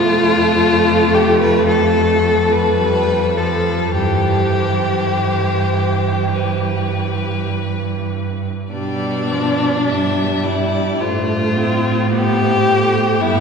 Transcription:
Already playing: cello F2, viola A3, violin F4 A4
1.15 violin G4
1.41 violin B4
1.68 violin A4
2.51 violin B4
2.80 viola G3
3.37 viola F3, violin A4
3.95 cello G2, viola E3, violin G4 C5
6.34 violin B4
8.71 cello B2, viola G3, violin D4 D5
9.31 viola F3
9.88 cello G2, viola G3, violin E5
10.43 violin E4 D5
11.00 cello A2, viola A3, violin F4 C5
11.57 viola C4
12.11 viola B3, violin G4 C5
12.68 viola A3
13.20 cello G2, viola B3, violin E4 E5

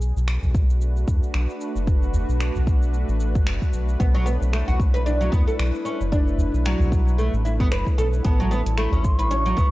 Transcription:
Already playing: analog synth bass B1, synth drone A3 D4 F#4 B4
0.02 shaker
0.16 analog synth bass B1, shaker
0.28 finger snap, shaker
0.43 analog synth bass B1, udu, shaker
0.55 kick, shaker
0.70 shaker
0.81 shaker
0.97 shaker
1.08 analog synth bass E2, kick, shaker
1.23 shaker
1.34 analog synth bass B1, finger snap, shaker
1.50 shaker
1.61 shaker
1.75 analog synth bass F#1, shaker
1.87 kick, shaker
2.03 shaker
2.14 udu, shaker
2.29 analog synth bass B1, shaker
2.40 finger snap, shaker
2.55 analog synth bass B1, udu, shaker
2.67 kick, shaker
2.82 shaker
2.94 shaker
3.08 analog synth bass A1, shaker
3.20 shaker
3.35 kick, shaker
3.47 analog synth bass F#1, finger snap, shaker
3.62 kick, shaker
3.73 analog synth bass B1, shaker
3.89 shaker
4.00 analog synth bass B1, oud B3, synth drone E4, kick, shaker
4.15 oud F#3, shaker
4.26 oud B3, shaker
4.41 analog synth bass B1, shaker
4.53 oud A3, finger snap, shaker
4.68 analog synth bass B1, oud F#4, udu, shaker
4.80 kick, shaker
4.94 oud B4, shaker
5.06 oud D4, shaker
5.21 oud F#3, shaker
5.32 analog synth bass E2, oud B3, kick, shaker
5.47 oud A4, shaker
5.59 analog synth bass B1, finger snap, shaker
5.75 shaker
5.85 oud C#4, shaker
6.00 analog synth bass F#1, shaker
6.12 oud D4, kick, shaker
6.28 shaker
6.38 udu, shaker
6.54 analog synth bass B1, shaker
6.65 oud F#3, finger snap, shaker
6.79 analog synth bass B1, udu, shaker
6.92 kick, shaker
7.08 shaker
7.18 oud A3, shaker
7.33 analog synth bass A1, shaker
7.45 oud E4, shaker
7.60 oud B3, kick, shaker
7.71 analog synth bass F#1, oud B4, finger snap, shaker
7.87 kick, shaker
7.98 analog synth bass B1, oud A4, shaker
8.13 shaker
8.25 analog synth bass A1, synth drone A3 F#4 C#5, oud B3, bansuri A5, kick, closed hi-hat, shaker
8.40 oud F#3, shaker
8.51 oud B3, shaker
8.66 analog synth bass A1, closed hi-hat, shaker
8.78 oud A3, bansuri B5, finger snap, closed hi-hat, shaker
8.92 analog synth bass A1, oud C#4, udu, shaker
9.04 bansuri C6, kick, shaker
9.19 oud B4, bansuri C#6, closed hi-hat, shaker
9.31 oud C#4, closed hi-hat, shaker
9.46 oud F#3, shaker
9.57 analog synth bass C#2, oud B3, kick, shaker

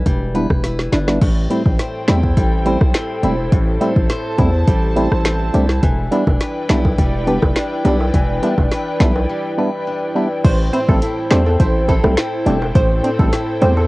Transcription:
Already playing: steel-string acoustic guitar E3 D4 E4 B4
0.06 808-style bass E1, steel-string acoustic guitar G3, kick, closed hi-hat
0.34 synth stab G3 B3 D4 E4, steel-string acoustic guitar B4, closed hi-hat
0.50 808-style bass E1, kick, cross-stick
0.64 steel-string acoustic guitar E4, snare, closed hi-hat
0.79 snare
0.92 808-style bass G1, synth stab D4 E4, steel-string acoustic guitar D4, snare, closed hi-hat
1.07 synth stab G3 B3 D4 E4, snare
1.21 808-style bass A1, steel-string acoustic guitar A2, analog synth pad E4 A4 C5 G5, kick, closed hi-hat, crash
1.50 synth stab G3 A3 C4 E4, steel-string acoustic guitar C4, closed hi-hat
1.66 808-style bass A1, kick
1.79 steel-string acoustic guitar C5, snare, closed hi-hat
2.08 808-style bass E2, synth stab G3 A3 C4 E4, steel-string acoustic guitar E4, finger snap, snare, closed hi-hat
2.23 kick
2.37 808-style bass A1, steel-string acoustic guitar G3, kick, closed hi-hat
2.65 synth stab G3 A3 C4 E4, steel-string acoustic guitar C5, closed hi-hat
2.81 808-style bass B1, kick, cross-stick
2.94 steel-string acoustic guitar C4, finger snap, snare, closed hi-hat
3.23 808-style bass E1, synth stab G3 A3 C4 E4, steel-string acoustic guitar E4, closed hi-hat
3.52 808-style bass A1, steel-string acoustic guitar A2, analog synth pad A5, kick, closed hi-hat
3.81 synth stab G3 A3 C4 E4, steel-string acoustic guitar C4, closed hi-hat
3.96 808-style bass A1, kick
4.10 steel-string acoustic guitar C5, snare, closed hi-hat
4.38 808-style bass E2, synth stab G3 A3 C4 E4, steel-string acoustic guitar E4, kick, closed hi-hat
4.68 808-style bass A1, steel-string acoustic guitar G3, kick, closed hi-hat
4.96 synth stab G3 A3 C4 E4, steel-string acoustic guitar C5, closed hi-hat
5.12 808-style bass A1, cross-stick
5.25 steel-string acoustic guitar C4, finger snap, snare, closed hi-hat
5.54 808-style bass C2, synth stab G3 A3 C4 D4, steel-string acoustic guitar E4, closed hi-hat
5.69 snare
5.83 808-style bass E1, steel-string acoustic guitar E3, analog synth pad E4 B4 D5 G5, kick, closed hi-hat
6.11 synth stab G3 B3 D4 E4, steel-string acoustic guitar D4, closed hi-hat, high bongo
6.27 808-style bass E1, kick, high bongo
6.40 steel-string acoustic guitar B4, snare, closed hi-hat
6.69 808-style bass B1, synth stab G3 B3 D4 E4, steel-string acoustic guitar E4, finger snap, snare, closed hi-hat
6.85 kick, high bongo
6.98 808-style bass E1, steel-string acoustic guitar G3, kick, closed hi-hat
7.27 synth stab G3 B3 D4 G4, steel-string acoustic guitar B4, closed hi-hat
7.42 808-style bass F1, kick, cross-stick, high bongo
7.56 steel-string acoustic guitar D4, finger snap, snare, closed hi-hat
7.84 808-style bass B1, synth stab G3 B3 D4 G4, steel-string acoustic guitar E4, closed hi-hat, low bongo
8.00 high bongo
8.14 808-style bass E1, steel-string acoustic guitar E3, kick, closed hi-hat
8.42 synth stab G3 B3 D4 E4, steel-string acoustic guitar D4, closed hi-hat, high bongo
8.58 808-style bass E1, kick, high bongo
8.71 steel-string acoustic guitar B4, snare, closed hi-hat
9.00 808-style bass B1, synth stab G3 B3 D4 E4, steel-string acoustic guitar E4, finger snap, kick, snare, closed hi-hat, low bongo
9.16 high bongo
9.29 steel-string acoustic guitar G3
9.57 synth stab G3 B3 D4 E4, steel-string acoustic guitar B4
9.87 steel-string acoustic guitar D4
10.15 synth stab G3 B3 D4 E4, steel-string acoustic guitar E4
10.44 808-style bass A1, steel-string acoustic guitar A2, analog synth pad E4 A4 C5 G5, synth pluck C5, kick, closed hi-hat, crash
10.73 synth stab C4 E4, steel-string acoustic guitar C4, synth pluck C5, closed hi-hat
10.88 808-style bass A1, synth stab G3 A3 C4 E4, synth pluck A4, kick, high bongo
11.02 steel-string acoustic guitar E4, closed hi-hat
11.31 808-style bass E2, synth stab G3 A3 C4 D4, steel-string acoustic guitar C4, synth pluck C5, finger snap, snare, closed hi-hat, low bongo
11.46 synth pluck A4, high bongo
11.60 808-style bass A1, steel-string acoustic guitar E4, synth pluck C5, kick, closed hi-hat
11.88 synth stab C4 E4, steel-string acoustic guitar C4, synth pluck A4, kick, closed hi-hat, high bongo
12.03 808-style bass B1, synth stab G3 A3 C4 E4, cross-stick, high bongo
12.17 steel-string acoustic guitar E4, finger snap, snare, closed hi-hat
12.46 808-style bass E1, synth stab G3 A3 C4 D4, steel-string acoustic guitar C4, closed hi-hat, low bongo
12.62 high bongo
12.75 808-style bass A1, steel-string acoustic guitar A2, synth pluck C5, kick, closed hi-hat
13.04 synth stab C4 D4, steel-string acoustic guitar C4, synth pluck C5, closed hi-hat
13.19 808-style bass A1, synth stab G3 A3 C4 E4, synth pluck A4, kick, high bongo
13.33 steel-string acoustic guitar E4, snare, closed hi-hat
13.62 808-style bass E2, synth stab G3 A3 C4 G4, steel-string acoustic guitar C4, synth pluck C5, closed hi-hat, low bongo
13.77 synth pluck A4, high bongo

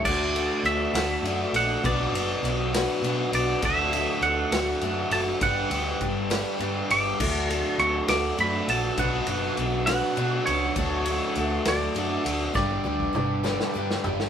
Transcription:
0.04 picked electric bass D2, steel-string acoustic guitar D3 A3 D4 F#4 A4, tonewheel organ A4 D5 F#5 D6, clean electric guitar D5, kick, crash
0.35 overdriven electric guitar A3, steel-string acoustic guitar D4 F#4 A4, ride
0.64 picked electric bass D2, steel-string acoustic guitar A3 D4 F#4 A4, clean electric guitar E5, ride
0.94 picked electric bass D2, steel-string acoustic guitar D3 A3 D4 F#4 A4, snare, ride
1.23 picked electric bass F#2, overdriven electric guitar D3, steel-string acoustic guitar A3 D4, ride
1.27 steel-string acoustic guitar F#4 A4
1.53 picked electric bass A#1, steel-string acoustic guitar F#4 A4, clean electric guitar F#5, ride
1.57 overdriven electric guitar A3, steel-string acoustic guitar D4
1.83 picked electric bass B1, steel-string acoustic guitar B2 F#3 B3 D4 F#4 B4, tonewheel organ B4 F#5, clean electric guitar D5, kick, ride
2.12 picked electric bass F#1, steel-string acoustic guitar D4 F#4 B4, ride
2.17 steel-string acoustic guitar B3
2.43 picked electric bass B1, steel-string acoustic guitar B3 D4 F#4 B4, ride
2.74 steel-string acoustic guitar B2 F#3 B3 D4 F#4 B4, snare, ride
3.02 picked electric bass B2, overdriven electric guitar F#3, steel-string acoustic guitar B3 D4, ride
3.06 steel-string acoustic guitar F#4 B4
3.32 picked electric bass B1, steel-string acoustic guitar D4 F#4 B4, clean electric guitar D5, ride
3.37 steel-string acoustic guitar B3
3.62 picked electric bass D2, steel-string acoustic guitar D3 A3 D4 F#4 A4, overdriven electric guitar F#3, tonewheel organ A4, clean electric guitar E5, kick, ride
3.93 overdriven electric guitar A3, steel-string acoustic guitar D4 F#4 A4, ride
4.22 picked electric bass D2, steel-string acoustic guitar A3 D4 F#4 A4, clean electric guitar F#5, ride
4.51 picked electric bass D2, steel-string acoustic guitar D3 A3 D4 F#4 A4, overdriven electric guitar F#3, snare, ride
4.81 picked electric bass F#2, overdriven electric guitar F#3, steel-string acoustic guitar A3 D4 F#4 A4, ride
5.11 picked electric bass F#1, overdriven electric guitar A3, steel-string acoustic guitar D4 F#4 A4, clean electric guitar A5, ride
5.41 picked electric bass G1, steel-string acoustic guitar G2 D3 G3 D4 G4 B4, overdriven electric guitar B3, tonewheel organ G4 B4, clean electric guitar F#5, kick, ride
5.70 picked electric bass D2, steel-string acoustic guitar G3 D4 G4 B4, overdriven electric guitar B3, ride
6.01 picked electric bass G1, steel-string acoustic guitar G3 D4 G4 B4, kick, ride
6.30 steel-string acoustic guitar G2 D3 G3 D4 G4 B4, overdriven electric guitar B3, snare, ride
6.59 picked electric bass G2, steel-string acoustic guitar G3 D4 G4 B4, overdriven electric guitar B3, ride
6.90 picked electric bass G1, steel-string acoustic guitar G3 G4 B4, overdriven electric guitar B3 D4, clean electric guitar D6, ride
7.20 picked electric bass D2, steel-string acoustic guitar D3 A3 D4 F#4 A4, overdriven electric guitar F#3, tonewheel organ A4 D5 F#5, kick, crash
7.48 steel-string acoustic guitar D4 F#4 A4, clean electric guitar C#6, ride
7.53 overdriven electric guitar A3
7.78 picked electric bass D2, steel-string acoustic guitar A3 D4 F#4, clean electric guitar C#6, ride
7.82 steel-string acoustic guitar A4
8.08 picked electric bass D2, steel-string acoustic guitar D3 A3 D4 F#4 A4, overdriven electric guitar F#3, clean electric guitar D6, snare, ride
8.37 picked electric bass F#2, overdriven electric guitar F#3, steel-string acoustic guitar A3 D4 F#4 A4, clean electric guitar B5, ride
8.68 picked electric bass A#1, overdriven electric guitar A3, steel-string acoustic guitar D4 F#4 A4, clean electric guitar A5, ride
8.97 picked electric bass B1, steel-string acoustic guitar B2 F#3 B3 D4 F#4 B4, tonewheel organ D4 B4, clean electric guitar F#5, kick, ride
9.27 picked electric bass F#1, steel-string acoustic guitar B3 D4 F#4 B4, ride
9.57 picked electric bass B1, steel-string acoustic guitar B3 D4 F#4 B4, ride
9.86 steel-string acoustic guitar B2 F#3 B3 D4 F#4 B4, clean electric guitar F#5, snare, ride
10.16 picked electric bass B2, overdriven electric guitar F#3, steel-string acoustic guitar B3 D4 F#4 B4, ride
10.46 picked electric bass C#2, steel-string acoustic guitar B3 D4 F#4 B4, clean electric guitar C#5, ride
10.76 picked electric bass D2, steel-string acoustic guitar D3 A3 D4 F#4 A4, overdriven electric guitar F#3, tonewheel organ A4, kick, ride
11.06 overdriven electric guitar A3, steel-string acoustic guitar D4 F#4 A4, ride
11.35 picked electric bass D2, steel-string acoustic guitar A3 D4 F#4 A4, ride
11.65 picked electric bass D2, steel-string acoustic guitar D3 A3 D4 F#4 A4, overdriven electric guitar F#3, clean electric guitar D5, snare, ride
11.95 picked electric bass F#2, overdriven electric guitar F#3, steel-string acoustic guitar A3 D4 F#4 A4, ride
12.24 picked electric bass D2, overdriven electric guitar A3, steel-string acoustic guitar D4 F#4 A4, ride
12.54 picked electric bass G1, steel-string acoustic guitar G2 D3 G3 D4 G4 B4, overdriven electric guitar B3, tonewheel organ B4 G5 D6, clean electric guitar D5, kick, snare
12.71 high tom
12.84 picked electric bass D2, steel-string acoustic guitar G3 D4 G4 B4, overdriven electric guitar B3
13.00 kick
13.13 picked electric bass G1, steel-string acoustic guitar G3 D4 G4 B4, mid tom
13.44 steel-string acoustic guitar G2 D3 G3 D4 G4 B4, overdriven electric guitar B3, snare
13.60 snare
13.74 picked electric bass G2, steel-string acoustic guitar G3 D4 G4 B4, overdriven electric guitar B3
13.91 snare
14.04 picked electric bass G1, steel-string acoustic guitar G3 D4 G4 B4, overdriven electric guitar B3, floor tom
14.20 snare

